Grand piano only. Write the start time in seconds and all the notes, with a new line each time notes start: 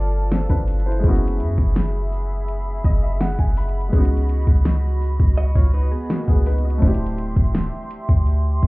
Already playing: A3 C4 D4 F4 G4
0.32 C4 A4
0.50 D4 B4
0.86 E4 C5
0.99 G#3 A#3
1.04 C#4 E4
1.08 B3 F#4
2.85 D#5
3.03 E5
3.21 F#5
3.39 G#5
3.57 B5
3.89 G#3 B3
3.93 C#4 D#4
3.98 F#4
6.10 A#3 F#4
6.29 B3 G#4
6.47 D#4 B4
6.65 F#4 D#5
6.78 A3 C4
6.83 D4 E4
6.88 G4